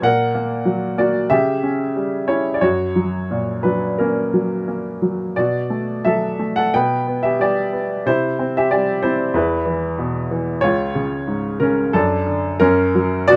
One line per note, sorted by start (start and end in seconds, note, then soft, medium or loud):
0.02 1.27 A#2 medium
0.02 0.96 A#4 medium
0.02 0.95 F#5 medium
0.35 0.96 A#3 soft
0.65 1.29 F#3 soft
0.98 1.30 A#3 soft
0.98 1.29 F#4 medium
0.98 1.32 D5 medium
1.30 2.58 C#3 medium
1.30 2.25 G4 medium
1.30 2.24 E5 medium
1.63 2.26 C#4 soft
1.96 2.61 G3 soft
2.28 2.61 C#4 soft
2.28 2.54 E4 soft
2.28 2.53 C#5 medium
2.54 2.62 D5 medium
2.61 5.33 F#2 soft
2.61 3.62 F#4 medium
2.61 3.68 C#5 medium
2.96 3.63 F#3 soft
3.31 4.64 A#2 soft
3.63 4.32 F#3 soft
3.63 3.97 D4 soft
3.63 4.00 B4 medium
3.98 4.66 A#3 soft
3.98 4.99 C#4 soft
3.98 4.98 A#4 medium
4.34 5.01 F#3 soft
4.68 5.35 A#3 soft
5.02 5.36 F#3 soft
5.36 6.70 B2 soft
5.36 6.03 F#4 medium
5.36 6.08 D5 medium
5.70 6.38 A3 soft
6.05 6.72 F#3 soft
6.05 6.54 A4 medium
6.05 6.58 E5 medium
6.39 6.73 A3 soft
6.56 6.73 A4 medium
6.56 6.72 F#5 medium
6.74 8.03 B2 medium
6.74 7.22 B4 medium
6.74 7.26 G5 medium
7.07 7.71 B3 soft
7.23 7.40 G4 medium
7.23 7.41 E5 medium
7.39 8.05 G3 soft
7.39 7.88 G4 medium
7.39 7.87 D5 medium
7.73 8.06 B3 soft
8.06 9.32 C3 medium
8.06 8.54 E4 medium
8.06 8.58 C5 medium
8.39 9.02 C4 soft
8.57 8.71 G4 medium
8.57 8.72 E5 medium
8.71 9.34 G3 soft
8.71 9.02 G4 medium
8.71 9.05 D5 medium
9.02 9.35 C4 soft
9.02 9.34 E4 soft
9.02 9.36 C5 medium
9.34 10.59 E2 medium
9.34 10.28 E4 soft
9.34 10.27 B4 medium
9.66 10.30 E3 soft
9.98 10.61 B2 medium
10.31 10.62 E3 soft
10.61 11.89 C#2 medium
10.61 11.57 F4 medium
10.61 11.63 C#5 medium
10.95 11.59 C#3 medium
11.28 11.91 G#2 medium
11.60 11.92 C#3 soft
11.60 11.92 C#4 medium
11.60 11.94 A#4 medium
11.93 12.59 F#2 medium
11.93 12.57 D4 medium
11.93 12.63 A4 medium
12.27 12.60 D3 medium
12.60 13.27 F#2 medium
12.60 13.09 C#4 medium
12.60 13.08 A#4 medium
12.95 13.28 F#3 soft
13.28 13.36 B2 medium
13.28 13.36 F#4 medium
13.28 13.36 D5 loud